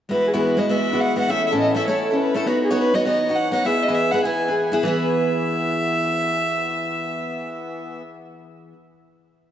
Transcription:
0.09 E3 G#3 B3 E4 F#4 B4
0.28 G#4
0.34 E2 E3 G#3 B3 E4 F#4
0.40 B4
0.57 G#3 B3 E4 F#4 D#5
0.69 G#3 B3 E4 F#4 E5
0.93 G#3 B3 E4 F#4
1.00 F#5
1.16 G#3 B3 E4 F#4 F#5
1.29 A3 C#4 E4 A4 E5
1.47 E5
1.52 A2 A3 C#4 E4 A4
1.58 D#5
1.75 A3 C#4 E4 A4 E5
1.87 A3 C#4 E4 A4 C#5
2.05 C#5
2.11 C#4 E4 A4
2.17 B4
2.34 A3 C#4 E4 A4
2.46 B3 D#4 F#4 B4 C#5
2.64 G#4
2.71 B3 D#4 F#4 C#5
2.78 B4
2.94 B3 D#4 F#4 C#5 D#5
3.05 B3 D#4 F#4 C#5 D#5
3.29 D#4 F#4 C#5
3.35 F#5
3.52 B3 D#4 F#4 C#5 F#5
3.65 B3 E4 G#4 B4 E5
3.83 D#5
3.88 E3 B3 E4 G#4 B4
3.94 E5
4.11 B3 E4 G#4 B4 F#5
4.24 B3 E4 G#4 B4 G#5
4.48 E4 G#4 B4
4.72 B3 E4 G#4 B4
4.83 E3 B3 E4 E5
4.88 G#4 B4

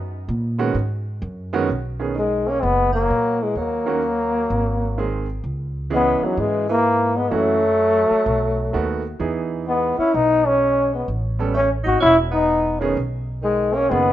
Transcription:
Already playing: F#2
0.28 A#2
0.58 D#3 G#3 B3 C#4 F#4
0.75 G#2
1.22 F#2
1.53 D#3 G#3 B3 C#4 F#4
1.69 B1
2.00 D#3 B3 C#4 G#4
2.15 D#3 G#3
2.46 A#3 C#4
2.60 F#1 G#3 B3
2.92 F#3 A#3
3.10 A#2
3.40 E3 G#3
3.55 D#2 F#3 A#3
3.86 D#3 A#3 C#4 F#4
4.50 G#1
4.98 D#3 G#3 C4 G#4
5.44 C#2
5.90 E3 G#3 B3 C#4 G#4
5.95 B3
6.21 D#3 F#3, muted upright bass stroke
6.37 G#2 E3 G#3
6.69 E3 A#3
7.16 G#3 B3
7.31 F#2 E3 F#3 A3 C#4 F#4
8.11 muted upright bass stroke
8.26 B1
8.73 D#2 D#3 A3 B3 F#4
9.20 E2 E3 B3 D#4 G#4
9.67 G#3 B3
9.98 C#4 E4, muted upright bass stroke
10.14 B1 B3 D#4
10.46 G#3 C#4
10.92 G#3 B3
11.08 A1
11.39 G3 B3 C#4 A4
11.54 A3 C#4
11.84 G#1 D#4 F#4
12.00 E1 C#4 E4
12.32 B3 D#4
12.80 D#3 A3 B3 C#4 G#4
12.97 B1
13.42 D#3 G#3
13.72 A#3 C#4
13.88 F#1 D#3 G#3 B3 C#4 G#4

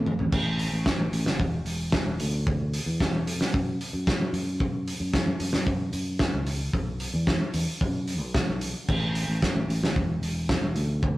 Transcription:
Already playing: A2
0.06 mid tom
0.19 A1, floor tom
0.32 A1, kick, crash
0.59 open hi-hat
0.72 A1
0.86 kick, snare
0.98 A1
1.12 A1, open hi-hat
1.25 F#1, snare
1.40 E1, kick
1.65 E1, open hi-hat
1.92 kick, snare
2.06 E1
2.20 D2, open hi-hat
2.47 kick
2.73 open hi-hat
2.86 E2
3.00 kick, snare
3.27 F2, open hi-hat
3.41 snare
3.54 F#2, kick
3.81 open hi-hat
3.93 F#2
4.07 kick, snare
4.20 F#3
4.32 F#2, open hi-hat
4.60 kick
4.88 open hi-hat
5.00 F#2
5.13 kick, snare
5.26 F#2
5.40 F#2, open hi-hat
5.53 F#2, snare
5.67 kick
5.93 F#2, open hi-hat
6.19 kick, snare
6.33 C#2
6.47 open hi-hat
6.73 B1, kick
7.00 open hi-hat
7.14 E2
7.27 kick, snare
7.53 E2, open hi-hat
7.81 F#2, kick
8.07 open hi-hat
8.21 B1
8.34 kick, snare
8.50 B1
8.61 open hi-hat
8.89 A1, kick, crash
9.15 open hi-hat
9.28 A1
9.42 kick, snare
9.55 A1
9.68 A1, open hi-hat
9.83 F#1, snare
9.96 E1, kick
10.22 E1, open hi-hat
10.49 kick, snare
10.61 E1
10.75 D2, open hi-hat
11.03 kick

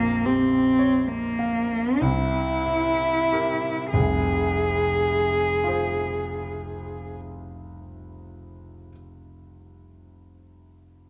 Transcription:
Already playing: A#1 F2 A#3 F4
0.25 C4 G4
0.79 C#5
1.07 A#3
1.39 F5
2.00 C2 E4
2.66 E4
3.32 G4 A#4
3.89 F1 G#4
3.94 C2
5.64 F4 G#4
5.68 C5

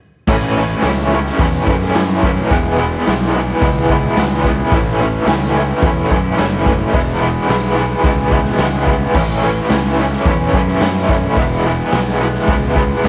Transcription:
0.27 A1 A2 E3 A3 C#4 E4, kick, crash
0.57 A2 E3 A3 C#4 E4
0.82 C#2 A2 E3 A3 C#4 E4, snare, open hi-hat
1.13 A2 E3 A3 C#4 E4
1.27 snare
1.38 E2 A2 E3 A3 C#4 E4, kick, open hi-hat
1.67 F#2 A2 E3 A3 C#4 E4, kick
1.82 snare
1.95 F#2 A2 E3 A3 C#4 E4, snare, open hi-hat
2.23 A2 E3 A3 C#4 E4, kick
2.50 E1 E3 G#3 B3 E4, kick, open hi-hat
2.78 E3 G#3 B3 E4
3.07 B1 E3 G#3 B3 E4, snare, open hi-hat
3.35 E3 G#3 B3 E4
3.62 C#2 E3 G#3 B3 E4, kick, open hi-hat
3.89 E3 G#3 B3 E4, kick
4.17 C#2 E3 G#3 B3 E4, snare, open hi-hat
4.44 E3 G#3 B3 E4, kick
4.72 A1 A2 E3 A3 C#4, kick, open hi-hat
4.76 E4
5.01 A2 E3 A3 C#4 E4
5.26 C#2 A2 E3 A3 C#4 E4, snare, open hi-hat
5.55 A2 E3 A3 C#4 E4
5.82 E2 A2 E3 A3 C#4, kick, open hi-hat
5.86 E4
6.10 F#2 A2 E3 A3 C#4 E4, kick
6.37 F#1 A2 E3 A3 C#4 E4, snare, open hi-hat
6.66 A2 E3 A3 C#4 E4, kick
6.93 E1 E3 G#3 B3 E4, kick, open hi-hat
7.21 E3 G#3 B3 E4
7.48 B1 E3 G#3 B3 E4, snare, open hi-hat
7.75 E3 G#3 B3 E4
8.03 C#2 E3 G#3 B3 E4, kick, open hi-hat
8.31 E3 G#3 B3 E4, kick
8.45 snare
8.58 C#2 E3 G#3 B3, snare, open hi-hat
8.63 E4
8.87 E3 G#3 B3 E4, kick
9.14 A1 A2 E3 A3 C#4 E4, kick, crash
9.42 A2 E3 A3 C#4 E4
9.70 C#2 A2 E3 A3 C#4 E4, snare, open hi-hat
9.99 A2 E3 A3 C#4 E4
10.13 snare
10.24 E2 A2 E3, kick, open hi-hat
10.29 A3 C#4 E4
10.53 F#2 A2 E3 A3 C#4 E4, kick
10.68 snare
10.81 F#2 A2 E3 A3 C#4, snare, open hi-hat
10.85 E4
11.09 A2 E3 A3 C#4 E4, kick
11.36 E1 E3 G#3 B3 E4, kick, open hi-hat
11.66 E3 G#3 B3 E4
11.92 B1 E3 G#3 B3 E4, snare, open hi-hat
12.21 E3 G#3 B3 E4
12.35 snare
12.47 C#2 E3 G#3 B3, kick, open hi-hat
12.51 E4
12.76 E3 G#3 B3 E4, kick
13.04 C#2 E3, snare, open hi-hat

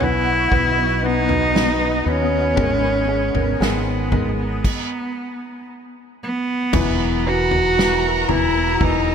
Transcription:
Already playing: B1 B3 D#5 F#5 C#6
0.00 F#3 B3 C#4 E4 B4, floor tom
0.51 B1 B3 B5, kick, floor tom
0.77 F#3 C#4 D#4 B4
1.02 F#3 B3 C#4 D#4 B4
1.29 F#3 C#4 D#4 B4, floor tom
1.54 B2 D#3 F#3 B3 C#4 D#4 B4, snare
1.80 F#3 C#4 D#4 B4
2.05 D#2 B3 C#4
2.32 F#3 C#4 D#4 B4
2.56 G#1 G#2 D#3 G#3 B3 D#4 A#4 G#5 A#5 D#6, kick, floor tom
2.83 G#3 B3 D#4 A#4
3.08 G#3
3.34 G#1 G#3 B3 D#4 A#4, floor tom
3.60 G#1 G#2 D#3 G#3 B3 D#4 A#4, snare
4.12 G#3 B3 D#4 A#4, kick, floor tom
4.40 B3
4.64 kick, crash
6.23 B3
6.73 E1 E3 F#3 B3 E4 F#4 A#4 B4 F#5 A#5 E6, kick, floor tom, crash
7.25 E3 F#3 B3 E4 F#4 B4
7.51 floor tom
7.77 E3 F#3 B3 E4 B4, snare
8.28 E1 E3 F#3 B3 E4 B4, floor tom
8.55 B3 E4 B4
8.80 E1 E3 F#3 B3 D#4 B4, kick, floor tom

